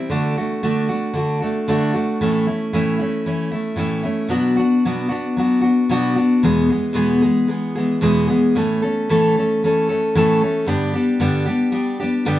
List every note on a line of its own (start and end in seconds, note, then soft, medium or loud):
0.00 0.10 G3 soft
0.10 0.35 D3 medium
0.10 0.36 A3 medium
0.10 0.36 D4 medium
0.10 0.36 F#4 medium
0.37 0.62 A3 soft
0.37 0.62 D4 soft
0.37 0.62 F#4 medium
0.63 0.89 D3 medium
0.63 0.89 A3 medium
0.63 0.89 D4 medium
0.63 0.87 F#4 medium
0.89 1.13 A3 soft
0.89 1.14 D4 soft
0.89 1.15 F#4 medium
1.14 1.40 D3 medium
1.14 1.41 A3 medium
1.14 1.41 D4 medium
1.14 1.39 F#4 medium
1.40 1.67 A3 soft
1.40 1.68 D4 soft
1.40 1.67 F#4 soft
1.68 1.94 D3 medium
1.68 1.94 A3 medium
1.68 1.94 D4 medium
1.68 1.92 F#4 medium
1.94 2.20 A3 soft
1.94 2.21 D4 medium
1.94 2.20 F#4 soft
2.21 2.47 A2 medium
2.21 2.47 E3 medium
2.21 2.47 A3 medium
2.21 2.47 C#4 medium
2.21 2.45 E4 medium
2.47 2.72 A3 soft
2.47 2.73 C#4 soft
2.47 2.73 E4 soft
2.73 3.00 A2 medium
2.73 3.00 E3 medium
2.73 3.00 A3 medium
2.73 3.00 C#4 medium
2.73 2.98 E4 medium
2.99 3.25 A3 soft
2.99 3.26 C#4 soft
2.99 3.26 E4 soft
3.26 3.53 E3 medium
3.26 3.53 A3 medium
3.26 3.51 C#4 medium
3.26 3.50 E4 medium
3.51 3.77 A3 soft
3.51 3.77 C#4 soft
3.51 3.77 E4 medium
3.76 4.04 A2 medium
3.76 4.04 E3 medium
3.76 4.04 A3 medium
3.76 4.03 C#4 medium
3.76 4.02 E4 medium
4.03 4.29 A3 soft
4.03 4.30 C#4 soft
4.03 4.30 E4 medium
4.29 4.57 B2 medium
4.29 4.58 F#3 medium
4.29 4.57 B3 medium
4.29 4.57 D4 medium
4.29 4.55 F#4 medium
4.56 4.85 B3 soft
4.56 4.85 D4 soft
4.56 4.84 F#4 medium
4.85 5.12 B2 medium
4.85 5.11 F#3 medium
4.85 5.10 B3 medium
4.85 5.09 D4 medium
4.85 5.08 F#4 medium
5.09 5.37 B3 soft
5.09 5.37 D4 soft
5.09 5.36 F#4 medium
5.37 5.64 F#3 medium
5.37 5.62 B3 medium
5.37 5.62 D4 medium
5.37 5.60 F#4 medium
5.61 5.89 B3 soft
5.61 5.90 D4 soft
5.61 5.89 F#4 medium
5.89 6.16 B2 medium
5.89 6.17 F#3 medium
5.89 6.17 B3 medium
5.89 6.16 D4 medium
5.89 6.15 F#4 medium
6.16 6.43 B3 soft
6.16 6.44 D4 soft
6.16 6.43 F#4 soft
6.43 6.70 E2 medium
6.43 6.69 B2 medium
6.43 6.70 E3 medium
6.43 6.70 G#3 medium
6.43 6.70 B3 medium
6.43 6.69 G#4 medium
6.70 6.93 E3 soft
6.70 6.93 G#3 soft
6.70 6.94 B3 medium
6.70 6.95 G#4 medium
6.93 7.21 E2 medium
6.93 7.21 B2 medium
6.93 7.22 E3 medium
6.93 7.22 G#3 medium
6.93 7.22 B3 medium
6.93 7.21 G#4 medium
7.22 7.47 E3 soft
7.22 7.48 G#3 soft
7.22 7.48 B3 medium
7.22 7.49 G#4 medium
7.48 7.75 E3 medium
7.48 7.75 G#3 medium
7.48 7.76 B3 medium
7.48 7.74 G#4 medium
7.75 8.01 E3 soft
7.75 8.01 G#3 soft
7.75 8.02 B3 medium
7.75 8.02 G#4 medium
8.01 8.28 E2 medium
8.01 8.28 B2 medium
8.01 8.29 E3 medium
8.01 8.29 G#3 medium
8.01 8.28 B3 medium
8.01 8.26 G#4 loud
8.28 8.55 E3 soft
8.28 8.55 G#3 medium
8.28 8.55 B3 medium
8.28 8.54 G#4 medium
8.55 8.81 A2 medium
8.55 8.82 E3 medium
8.55 8.82 A3 medium
8.55 8.82 C#4 medium
8.55 8.81 A4 medium
8.82 9.09 A3 soft
8.82 9.09 C#4 soft
8.82 9.08 A4 medium
9.09 9.35 A2 medium
9.09 9.35 E3 medium
9.09 9.35 A3 medium
9.09 9.35 C#4 medium
9.09 9.35 A4 medium
9.37 9.63 A3 soft
9.37 9.63 C#4 soft
9.37 9.62 A4 soft
9.64 9.89 E3 medium
9.64 9.89 A3 medium
9.64 9.88 C#4 medium
9.64 9.88 A4 medium
9.89 10.15 A3 soft
9.89 10.15 C#4 medium
9.89 10.15 A4 medium
10.15 10.41 A2 medium
10.15 10.41 E3 medium
10.15 10.42 A3 medium
10.15 10.41 C#4 loud
10.15 10.39 A4 medium
10.40 10.67 A3 soft
10.40 10.67 C#4 medium
10.40 10.67 A4 medium
10.66 10.93 G2 medium
10.66 10.94 D3 medium
10.66 10.94 G3 medium
10.66 10.94 B3 medium
10.66 10.94 D4 medium
10.66 10.92 G4 medium
10.93 11.20 G3 soft
10.93 11.20 B3 soft
10.93 11.21 D4 medium
10.93 11.20 G4 medium
11.20 11.46 G2 medium
11.20 11.46 D3 medium
11.20 11.47 G3 medium
11.20 11.46 B3 medium
11.20 11.46 D4 medium
11.20 11.45 G4 medium
11.46 11.71 G3 soft
11.46 11.71 B3 soft
11.46 11.71 D4 soft
11.46 11.72 G4 medium
11.72 11.99 G3 medium
11.72 11.99 B3 medium
11.72 11.99 D4 medium
11.72 11.98 G4 medium
12.00 12.25 G3 soft
12.00 12.25 B3 soft
12.00 12.26 D4 medium
12.00 12.26 G4 medium
12.25 12.39 G2 medium
12.25 12.39 D3 medium
12.25 12.39 G3 medium
12.25 12.39 B3 medium
12.25 12.39 D4 medium
12.25 12.39 G4 loud